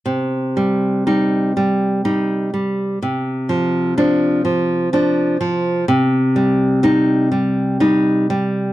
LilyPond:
\new Staff \with { instrumentName = "Nylon-string guitar" } { \clef bass \time 3/4 \key c \minor \tempo 4 = 62 c8 g8 <g ees'>8 g8 <g ees'>8 g8 | c8 f8 <f d'>8 f8 <f d'>8 f8 | c8 g8 <g ees'>8 g8 <g ees'>8 g8 | }